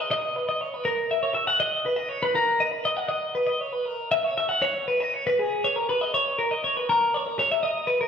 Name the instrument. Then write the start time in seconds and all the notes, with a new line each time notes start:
clean electric guitar
0.00 D#5
0.11 D#5
0.36 B4
0.49 D#5
0.61 C#5
0.74 B4
0.85 A#4
1.11 E5
1.23 C#5
1.35 E5
1.47 F#5
1.60 D#5
1.86 B4
1.96 D#5
2.09 C#5
2.23 B4
2.35 A#4
2.60 D#5
2.72 B4
2.85 D#5
2.97 F#5
3.09 D#5
3.35 B4
3.47 D#5
3.61 C#5
3.73 B4
3.85 A#4
4.12 E5
4.24 C#5
4.38 E5
4.49 F#5
4.62 C#5
4.88 B4
5.00 D#5
5.14 C#5
5.27 B4
5.39 G#4
5.64 C#5
5.76 A#4
5.89 B4
6.01 D#5
6.14 C#5
6.39 A#4
6.51 D#5
6.64 C#5
6.77 B4
6.89 A#4
7.14 C#5
7.26 A#4
7.39 C#5
7.52 E5
7.63 D#5
7.87 B4
8.01 A#4